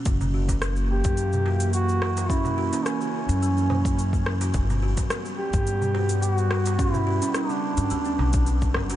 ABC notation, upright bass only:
X:1
M:4/4
L:1/16
Q:"Swing 16ths" 1/4=107
K:none
V:1 name="Upright bass" clef=bass
^F,,,6- F,,, ^F,,8- F,,- | ^F,,3 z4 F,,8- F,, | G,,,3 z4 G,,8- G,,- | G,,3 z4 G,, D,,2 B,,,4 G,,,2 |]